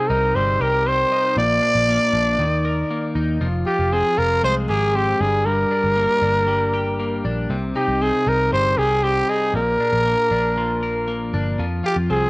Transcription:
0.00 1.38 C3 medium
0.00 0.36 G3 medium
0.00 0.85 C4 medium
0.00 0.61 G4 medium
0.00 0.11 G#4 medium
0.09 0.32 C2 loud
0.09 1.11 D#4 medium
0.09 0.37 A#4 medium
0.35 0.57 G1 loud
0.35 1.43 G3 medium
0.35 0.63 C5 medium
0.60 1.04 C2 medium
0.60 1.43 G4 medium
0.60 0.89 A#4 loud
0.86 1.42 C4 medium
0.86 1.38 C5 loud
1.12 1.43 D#4 medium
1.37 1.59 A#1 loud
1.37 2.44 A#2 medium
1.37 3.12 D5 loud
1.62 2.12 D4 medium
1.75 1.97 A#1 medium
1.89 2.45 A#3 medium
2.13 2.35 A#1 medium
2.13 2.44 D4 medium
2.39 2.82 D#2 loud
2.39 3.41 D#3 medium
2.65 3.47 A#4 medium
2.90 3.47 A#3 medium
3.15 3.37 D#2 medium
3.15 3.46 D#4 medium
3.41 3.63 F1 medium
3.41 5.25 F3 medium
3.66 4.16 F4 medium
3.66 3.94 G4 medium
3.79 4.01 F1 loud
3.93 4.94 C4 medium
3.93 4.20 G#4 medium
4.17 4.40 F1 loud
4.17 5.25 F4 medium
4.17 4.44 A#4 loud
4.43 4.65 C2 loud
4.43 5.25 G#3 medium
4.43 4.56 C5 loud
4.69 5.13 G#1 medium
4.69 6.73 G4 medium
4.69 4.97 G#4 medium
4.95 5.25 C4 medium
4.95 5.22 G4 loud
5.20 5.64 G1 medium
5.20 5.45 G2 medium
5.20 5.47 G#4 medium
5.45 7.50 G2 medium
5.45 7.24 A#4 loud
5.71 6.21 D4 medium
5.84 6.06 G1 medium
5.96 6.98 A#3 medium
6.22 7.20 G1 medium
6.22 7.24 D4 medium
6.48 8.52 G3 medium
6.74 8.78 G4 medium
6.99 7.55 A#3 medium
7.25 7.46 A#1 medium
7.25 7.55 D4 medium
7.50 7.72 C2 medium
7.50 9.54 C3 medium
7.76 8.26 D#4 medium
7.76 8.03 G4 medium
7.88 8.10 C2 loud
8.01 9.03 C4 medium
8.01 8.30 G#4 loud
8.27 8.48 C2 loud
8.27 9.28 D#4 medium
8.27 8.53 A#4 loud
8.52 8.74 G1 loud
8.52 9.60 G3 medium
8.52 8.79 C5 loud
8.78 9.21 C2 medium
8.78 9.60 G4 medium
8.78 9.05 G#4 loud
9.03 9.60 C4 medium
9.03 9.31 G4 loud
9.29 9.60 D#4 medium
9.29 9.55 G#4 medium
9.54 9.76 A#1 loud
9.54 11.59 A#2 medium
9.54 11.30 A#4 loud
9.80 10.30 D4 medium
9.93 10.14 A#1 medium
10.06 11.06 A#3 medium
10.31 11.29 A#1 medium
10.31 11.33 D4 medium
10.58 11.58 F3 medium
10.83 11.64 A#4 medium
11.08 11.64 A#3 medium
11.33 11.55 G1 medium
11.33 11.64 D4 medium
11.59 11.81 F2 loud
11.59 12.30 F3 medium
11.84 12.30 F4 medium
11.84 11.97 G4 medium
11.96 12.08 F2 loud
12.10 12.30 C2 medium
12.10 12.30 C4 medium
12.10 12.30 G#4 medium

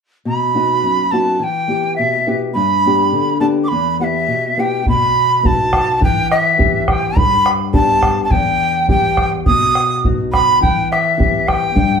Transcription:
0.25 0.82 B2 medium
0.25 1.12 B5 medium
0.55 1.01 B3 soft
0.55 1.01 D#4 soft
0.55 1.01 F#4 soft
0.83 1.39 F#2 soft
1.11 1.36 B3 soft
1.11 1.36 D#4 soft
1.11 1.36 F#4 soft
1.11 1.35 A5 medium
1.35 1.39 A5 medium
1.39 1.96 E3 medium
1.39 1.95 G5 medium
1.39 1.44 A5 medium
1.68 2.15 B3 soft
1.68 2.16 E4 soft
1.68 2.16 G4 soft
1.95 2.55 B2 medium
1.95 2.37 E5 medium
2.27 2.51 B3 soft
2.27 2.50 E4 soft
2.27 2.51 G4 soft
2.54 3.12 G2 medium
2.54 3.38 B5 medium
2.85 3.32 B3 soft
2.85 3.32 D4 soft
2.85 3.33 G4 soft
3.13 3.69 D3 medium
3.40 3.65 B3 soft
3.40 3.65 D4 soft
3.40 3.65 G4 soft
3.40 3.46 A5 medium
3.64 3.70 D6 medium
3.68 4.27 E2 medium
3.68 3.99 B5 medium
4.00 4.46 B3 soft
4.00 4.46 E4 soft
4.00 4.47 G4 soft
4.00 4.61 E5 medium
4.00 4.04 F#5 medium
4.28 4.84 B2 medium
4.57 4.81 B3 soft
4.57 4.81 E4 soft
4.57 4.81 G4 soft
4.57 4.88 G5 medium
4.86 5.99 B2 medium
4.86 5.47 B5 medium
4.86 bombo low medium
5.43 6.00 B3 soft
5.43 6.00 D#4 soft
5.43 6.00 F#4 soft
5.43 6.03 A5 medium
5.43 bombo low medium
5.73 bombo rim soft
5.73 bombo low soft
6.01 7.13 E3 medium
6.01 6.29 G5 medium
6.01 bombo low medium
6.31 6.90 E5 medium
6.31 bombo rim soft
6.58 7.14 B3 soft
6.58 7.14 E4 soft
6.58 7.15 G4 soft
6.58 bombo low medium
6.88 7.19 G5 medium
6.88 bombo rim medium
6.88 bombo low medium
7.16 8.28 G2 medium
7.16 7.48 B5 medium
7.16 bombo low medium
7.46 bombo rim soft
7.73 8.30 B3 soft
7.73 8.29 D4 soft
7.73 8.30 G4 soft
7.73 8.21 A5 medium
7.73 bombo low medium
8.03 bombo rim medium
8.03 bombo low soft
8.24 8.32 A5 medium
8.31 9.43 E2 medium
8.31 8.89 G5 medium
8.31 bombo low medium
8.89 9.45 B3 soft
8.89 9.45 E4 soft
8.89 9.45 G4 soft
8.89 9.29 G5 medium
8.89 bombo low medium
9.17 bombo rim soft
9.17 bombo low soft
9.46 10.59 B2 medium
9.46 10.01 D#6 medium
9.46 bombo low medium
9.75 bombo rim soft
10.04 10.60 B3 soft
10.04 10.60 D#4 soft
10.04 10.60 F#4 soft
10.04 bombo low medium
10.32 10.59 B5 medium
10.32 bombo rim soft
10.32 bombo low soft
10.61 11.72 E3 medium
10.61 10.88 G5 medium
10.61 bombo low medium
10.91 11.49 E5 medium
10.91 bombo rim soft
11.18 11.74 B3 soft
11.18 11.74 E4 soft
11.18 11.74 G4 soft
11.18 bombo low medium
11.47 12.00 G5 medium
11.47 bombo rim soft
11.47 bombo low soft
11.75 12.00 G2 medium
11.75 bombo low medium

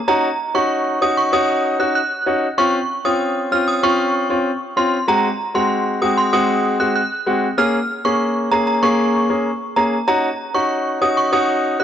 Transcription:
0.08 0.27 C#4 medium
0.08 0.27 D#4 medium
0.08 0.28 F#4 loud
0.08 0.20 A#5 loud
0.54 0.98 C#4 medium
0.54 0.98 D#4 medium
0.54 0.98 F#4 medium
0.54 0.67 C#6 medium
1.01 1.30 C#4 medium
1.01 1.30 D#4 medium
1.01 1.31 F#4 medium
1.01 1.14 D#6 medium
1.17 1.30 C#6 medium
1.33 1.76 C#4 loud
1.33 1.76 D#4 medium
1.33 1.76 F#4 loud
1.33 1.45 D#6 medium
1.79 1.99 C#4 medium
1.79 1.99 D#4 medium
1.79 1.99 F#4 medium
1.79 1.92 F#6 medium
1.95 2.40 F#6 medium
2.26 2.46 C#4 medium
2.26 2.46 D#4 medium
2.26 2.46 F#4 medium
2.58 2.77 C4 medium
2.58 2.77 C#4 medium
2.58 2.77 F4 loud
2.58 2.70 C#6 medium
3.05 3.48 C4 medium
3.05 3.48 C#4 medium
3.05 3.48 F4 medium
3.05 3.17 D#6 medium
3.51 3.80 C4 medium
3.51 3.80 C#4 medium
3.51 3.81 F4 medium
3.51 3.64 F6 medium
3.68 3.80 D#6 medium
3.83 4.26 C4 loud
3.83 4.26 C#4 medium
3.83 4.26 F4 loud
3.83 4.27 C#6 loud
4.30 4.49 C4 medium
4.30 4.49 C#4 medium
4.30 4.49 F4 medium
4.76 4.96 C4 medium
4.76 4.96 C#4 medium
4.76 4.96 F4 medium
4.76 4.89 C6 medium
5.08 5.27 G#3 medium
5.08 5.27 C4 medium
5.08 5.27 F#4 loud
5.08 5.20 A#5 loud
5.54 5.98 G#3 medium
5.54 5.98 C4 medium
5.54 5.98 F#4 medium
5.54 5.67 C6 medium
6.01 6.30 G#3 medium
6.01 6.30 C4 medium
6.01 6.31 F#4 medium
6.01 6.14 D#6 medium
6.17 6.30 C6 medium
6.33 6.76 G#3 medium
6.33 6.76 C4 medium
6.33 6.76 F#4 loud
6.33 6.45 D#6 medium
6.80 6.99 G#3 medium
6.80 6.99 C4 medium
6.80 6.99 F#4 medium
6.80 6.92 F#6 medium
6.95 7.40 F#6 medium
7.26 7.46 G#3 medium
7.26 7.46 C4 medium
7.26 7.46 F#4 medium
7.58 7.77 A#3 medium
7.58 7.77 C#4 medium
7.58 7.77 G#4 loud
7.58 7.70 F6 medium
8.05 8.48 A#3 medium
8.05 8.48 C#4 medium
8.05 8.48 G#4 medium
8.05 8.17 C#6 medium
8.51 8.80 A#3 medium
8.51 8.81 C#4 medium
8.51 8.81 G#4 medium
8.51 8.64 A#5 medium
8.67 8.80 A#5 medium
8.83 9.26 A#3 loud
8.83 9.26 C#4 medium
8.83 9.26 G#4 loud
8.83 9.27 C#6 loud
9.30 9.49 A#3 medium
9.30 9.49 C#4 medium
9.30 9.49 G#4 medium
9.76 9.96 A#3 medium
9.76 9.96 C#4 medium
9.76 9.96 G#4 medium
9.76 9.89 A#5 medium
10.08 10.27 C#4 medium
10.08 10.27 D#4 medium
10.08 10.27 F#4 loud
10.08 10.20 A#5 loud
10.54 10.98 C#4 medium
10.54 10.98 D#4 medium
10.54 10.98 F#4 medium
10.54 10.67 C#6 medium
11.01 11.30 C#4 medium
11.01 11.30 D#4 medium
11.01 11.31 F#4 medium
11.01 11.14 D#6 medium
11.17 11.30 C#6 medium
11.33 11.76 C#4 loud
11.33 11.76 D#4 medium
11.33 11.76 F#4 loud
11.33 11.45 D#6 medium
11.80 11.84 C#4 medium
11.80 11.84 D#4 medium
11.80 11.84 F#4 medium
11.80 11.84 F#6 medium

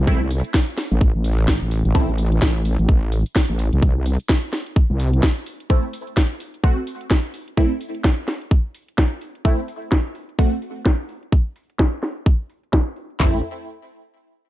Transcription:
0.00 0.42 C2 medium
0.07 0.21 A3 medium
0.07 0.21 C4 medium
0.07 0.21 E4 medium
0.07 kick loud
0.07 closed hi-hat medium
0.31 open hi-hat loud
0.44 closed hi-hat medium
0.54 kick loud
0.54 snare loud
0.54 closed hi-hat soft
0.78 snare medium
0.78 open hi-hat medium
0.91 1.13 A1 medium
0.91 closed hi-hat medium
1.01 kick loud
1.01 closed hi-hat medium
1.15 1.60 A1 loud
1.24 open hi-hat loud
1.38 closed hi-hat medium
1.48 kick loud
1.48 snare loud
1.48 closed hi-hat medium
1.62 1.83 A1 medium
1.71 open hi-hat medium
1.85 1.93 A1 medium
1.85 closed hi-hat medium
1.95 2.06 A1 medium
1.95 2.09 A3 medium
1.95 2.09 C4 medium
1.95 2.09 E4 medium
1.95 kick loud
1.95 closed hi-hat medium
2.09 2.40 A1 loud
2.18 open hi-hat loud
2.32 closed hi-hat medium
2.42 2.77 A1 medium
2.42 kick loud
2.42 snare loud
2.42 closed hi-hat soft
2.65 open hi-hat loud
2.79 3.24 A1 medium
2.79 closed hi-hat medium
2.89 kick loud
2.89 closed hi-hat medium
3.12 open hi-hat loud
3.26 closed hi-hat medium
3.36 kick loud
3.36 snare loud
3.36 closed hi-hat medium
3.49 3.71 A1 medium
3.59 open hi-hat loud
3.73 4.17 C2 medium
3.73 closed hi-hat soft
3.82 kick loud
3.82 closed hi-hat medium
4.06 open hi-hat loud
4.20 closed hi-hat medium
4.29 kick loud
4.29 snare loud
4.29 closed hi-hat soft
4.53 snare medium
4.53 open hi-hat medium
4.66 closed hi-hat soft
4.76 kick loud
4.76 closed hi-hat medium
4.90 5.21 C2 loud
5.00 open hi-hat loud
5.14 closed hi-hat medium
5.23 kick loud
5.23 snare loud
5.23 closed hi-hat medium
5.46 open hi-hat medium
5.60 closed hi-hat soft
5.70 5.84 A3 medium
5.70 5.84 C4 medium
5.70 5.84 E4 medium
5.70 kick loud
5.70 closed hi-hat medium
5.93 open hi-hat loud
6.07 closed hi-hat medium
6.17 kick loud
6.17 snare loud
6.40 open hi-hat medium
6.54 closed hi-hat medium
6.64 6.77 A3 medium
6.64 6.77 C4 medium
6.64 6.77 F#4 medium
6.64 kick loud
6.64 closed hi-hat medium
6.87 open hi-hat loud
7.01 closed hi-hat soft
7.11 kick loud
7.11 snare loud
7.11 closed hi-hat medium
7.34 open hi-hat medium
7.48 closed hi-hat medium
7.57 7.71 A3 medium
7.57 7.71 C4 medium
7.57 7.71 E4 medium
7.57 kick loud
7.57 closed hi-hat medium
7.81 open hi-hat loud
7.95 closed hi-hat medium
8.04 kick loud
8.04 snare loud
8.04 closed hi-hat soft
8.28 snare medium
8.28 open hi-hat medium
8.41 closed hi-hat medium
8.51 kick loud
8.75 open hi-hat loud
8.88 closed hi-hat medium
8.98 kick loud
8.98 snare loud
9.21 open hi-hat medium
9.35 closed hi-hat medium
9.45 9.59 A3 medium
9.45 9.59 C4 medium
9.45 9.59 E4 medium
9.45 kick loud
9.68 open hi-hat loud
9.82 closed hi-hat medium
9.92 kick loud
9.92 snare loud
10.15 open hi-hat medium
10.29 closed hi-hat medium
10.39 10.52 A3 medium
10.39 10.52 C4 medium
10.39 10.52 F#4 medium
10.39 kick loud
10.62 open hi-hat loud
10.76 closed hi-hat medium
10.86 kick loud
10.86 snare loud
11.09 open hi-hat medium
11.23 closed hi-hat medium
11.32 kick loud
11.56 open hi-hat loud
11.70 closed hi-hat medium
11.79 kick loud
11.79 snare loud
12.03 snare medium
12.03 open hi-hat medium
12.17 closed hi-hat medium
12.26 kick loud
12.50 open hi-hat loud
12.63 closed hi-hat medium
12.73 kick loud
12.73 snare loud
12.96 open hi-hat medium
13.10 closed hi-hat medium
13.20 13.42 A1 medium
13.20 13.38 A3 medium
13.20 13.38 C4 medium
13.20 13.38 E4 medium
13.20 kick loud
13.20 clap medium
13.20 floor tom loud

